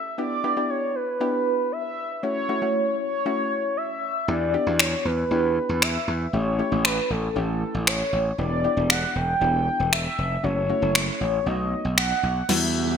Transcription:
Already playing: E5
0.18 B3 D4 E4 G4 D5
0.44 B3 D4 E4 G4
0.57 B3 D4 E4 G4
0.70 C#5
0.95 B4
1.20 B3 D4 E4 G4
1.72 E5
2.23 A3 C#4 E4 F#4 C#5
2.49 A3 C#4 E4 F#4
2.62 A3 C#4 E4 F#4
3.00 C#5
3.26 A3 C#4 E4 F#4
3.77 E5
4.28 E2 B3 D4 E4 G4 D5
4.54 B3 D4 E4 G4
4.67 E2 B3 D4 E4 F#4
4.79 C#5, finger snap
5.05 E2 B4
5.31 E2 B3 D4 E4 G4
5.69 E2
5.82 E5, finger snap
6.08 E2
6.33 A1 A3 C#4 E4 G4 C#5
6.59 A3 C#4 E4 G4
6.72 A1 A3 C#4 E4 G4
6.85 B4, finger snap
7.10 A1 A4
7.36 A1 A3 C#4 E4 G4
7.74 A1
7.87 C#5, finger snap
8.13 A1
8.38 E1 B3 D4 E4 G4 D5
8.64 B3 D4 E4 G4
8.77 E1 B3 D4 E4 G4
8.90 F#5, finger snap
9.15 E1 G5
9.41 E1 B3 D4 E4 G4
9.80 E1
9.93 E5, finger snap
10.18 F1
10.43 F#1 A3 C#4 E4 F#4 C#5
10.69 A3 C#4 E4 F#4
10.82 F#1 A3 C#4 E4 A4
10.95 finger snap
11.21 A1 C#5
11.46 B1 A3 B3 D#4 F#4 D#5
11.85 B1
11.98 F#5, finger snap
12.23 B1
12.49 E2 E3 G3 B3 E4 F#4 E5, snare, crash, riser
12.74 F#4
12.87 G4

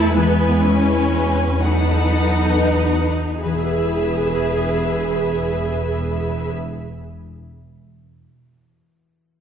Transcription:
Already playing: E2 E3 A3 E4 A4 B4 C5 E5 A5
0.13 E3 G#3 B3 B4 G#5
0.61 C#4 E4
1.12 F#4
1.62 F#3 D#4 A4 B4 F#5
2.21 B4
2.83 F#4
3.42 E1 E2 E3 G#4 B4 E5
3.51 B3
3.58 E4
3.65 B4
3.72 E5

